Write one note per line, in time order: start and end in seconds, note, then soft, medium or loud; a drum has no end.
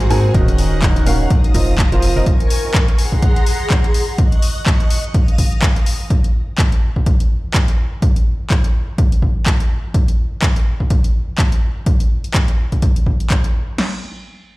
0.00 0.33 F#4 medium
0.00 0.74 F#4 medium
0.00 0.33 G#4 medium
0.00 0.34 C5 medium
0.00 0.74 G#5 medium
0.00 0.33 A#5 medium
0.00 2.26 A#5 medium
0.00 0.33 C6 medium
0.00 closed hi-hat medium
0.10 0.32 G#2 loud
0.10 0.32 C4 loud
0.10 0.32 G#4 medium
0.10 0.32 A#4 medium
0.10 0.32 G#5 loud
0.10 open hi-hat loud
0.34 1.04 D#1 loud
0.34 1.04 D#3 medium
0.34 1.04 C#4 medium
0.34 2.26 D#4 medium
0.34 1.04 F#4 medium
0.34 1.04 A#4 medium
0.34 1.04 D#5 loud
0.34 1.29 D#5 medium
0.34 1.29 C#6 medium
0.34 1.29 F#6 medium
0.34 kick loud
0.34 closed hi-hat medium
0.48 1.30 C#5 medium
0.48 closed hi-hat medium
0.58 1.30 F#5 medium
0.58 open hi-hat loud
0.82 kick loud
0.82 clap loud
0.82 closed hi-hat medium
0.96 closed hi-hat medium
1.06 1.27 D#1 loud
1.06 1.29 C#4 medium
1.06 1.29 F#4 medium
1.06 1.29 A#4 medium
1.06 1.29 F5 loud
1.06 open hi-hat loud
1.30 2.25 F5 medium
1.30 2.25 D#6 medium
1.30 2.25 A#6 medium
1.30 kick loud
1.30 closed hi-hat medium
1.44 2.26 C5 medium
1.44 closed hi-hat soft
1.54 1.90 F1 loud
1.54 1.71 F3 medium
1.54 1.71 C4 medium
1.54 1.71 F4 medium
1.54 1.71 A#4 medium
1.54 1.71 D#5 medium
1.54 2.27 F5 medium
1.54 kick medium
1.54 open hi-hat loud
1.78 kick loud
1.78 clap loud
1.78 closed hi-hat medium
1.92 2.13 F1 medium
1.92 2.13 F3 medium
1.92 2.13 C4 medium
1.92 2.13 F4 medium
1.92 2.13 A#4 medium
1.92 2.13 C5 loud
1.92 closed hi-hat medium
2.02 open hi-hat loud
2.16 2.22 F1 loud
2.16 2.24 C4 medium
2.16 2.24 F4 medium
2.16 2.24 A#4 medium
2.16 2.24 D#5 medium
2.26 2.98 A#4 medium
2.26 2.98 G#5 medium
2.26 2.98 C#6 medium
2.26 kick loud
2.26 closed hi-hat medium
2.40 closed hi-hat soft
2.50 open hi-hat loud
2.74 kick loud
2.74 clap loud
2.74 closed hi-hat medium
2.88 closed hi-hat soft
2.98 4.17 G#4 medium
2.98 4.17 F#5 medium
2.98 4.17 A#5 medium
2.98 4.17 C6 medium
2.98 open hi-hat loud
3.12 kick medium
3.22 kick loud
3.22 closed hi-hat medium
3.36 closed hi-hat soft
3.46 open hi-hat loud
3.70 kick loud
3.70 clap loud
3.70 closed hi-hat medium
3.84 closed hi-hat medium
3.94 open hi-hat loud
4.18 5.13 D#5 medium
4.18 5.13 C#6 medium
4.18 5.13 F#6 medium
4.18 kick loud
4.18 closed hi-hat medium
4.32 closed hi-hat medium
4.42 open hi-hat loud
4.66 kick loud
4.66 clap loud
4.66 closed hi-hat medium
4.80 closed hi-hat soft
4.90 open hi-hat loud
5.04 closed hi-hat soft
5.14 6.09 F5 medium
5.14 6.09 D#6 medium
5.14 6.09 A#6 medium
5.14 kick loud
5.14 closed hi-hat medium
5.28 closed hi-hat soft
5.38 kick medium
5.38 open hi-hat loud
5.52 closed hi-hat soft
5.62 kick loud
5.62 clap loud
5.62 closed hi-hat medium
5.76 closed hi-hat soft
5.86 open hi-hat loud
6.10 kick loud
6.10 closed hi-hat medium
6.24 closed hi-hat soft
6.58 kick loud
6.58 clap loud
6.58 closed hi-hat medium
6.72 closed hi-hat soft
6.96 kick medium
7.06 kick loud
7.06 closed hi-hat medium
7.20 closed hi-hat soft
7.54 kick loud
7.54 clap loud
7.54 closed hi-hat medium
7.68 closed hi-hat soft
8.02 kick loud
8.02 closed hi-hat medium
8.16 closed hi-hat medium
8.50 kick loud
8.50 clap loud
8.50 closed hi-hat medium
8.64 closed hi-hat medium
8.98 kick loud
8.98 closed hi-hat medium
9.12 closed hi-hat soft
9.22 kick medium
9.46 kick loud
9.46 clap loud
9.46 closed hi-hat medium
9.60 closed hi-hat medium
9.94 kick loud
9.94 closed hi-hat medium
10.08 closed hi-hat medium
10.42 kick loud
10.42 clap loud
10.42 closed hi-hat medium
10.56 closed hi-hat soft
10.80 kick medium
10.90 kick loud
10.90 closed hi-hat medium
11.04 closed hi-hat soft
11.38 kick loud
11.38 clap loud
11.38 closed hi-hat medium
11.52 closed hi-hat medium
11.86 kick loud
11.86 closed hi-hat medium
12.00 closed hi-hat medium
12.24 closed hi-hat soft
12.34 kick loud
12.34 clap loud
12.34 closed hi-hat medium
12.48 closed hi-hat medium
12.72 kick medium
12.72 closed hi-hat soft
12.82 kick loud
12.82 closed hi-hat medium
12.96 closed hi-hat medium
13.06 kick medium
13.20 closed hi-hat soft
13.30 kick loud
13.30 clap loud
13.30 closed hi-hat medium
13.44 closed hi-hat medium
13.78 snare loud
13.78 crash medium